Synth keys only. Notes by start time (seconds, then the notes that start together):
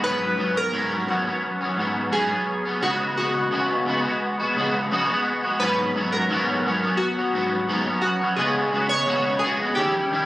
0.04 B4
0.57 A#4
1.08 F#4
2.12 G#4
2.82 F#4
3.17 F#4
5.60 B4
6.12 A#4
6.97 F#4
8.02 F#4
8.36 G#4
8.89 C#5
9.39 G#4
9.75 G4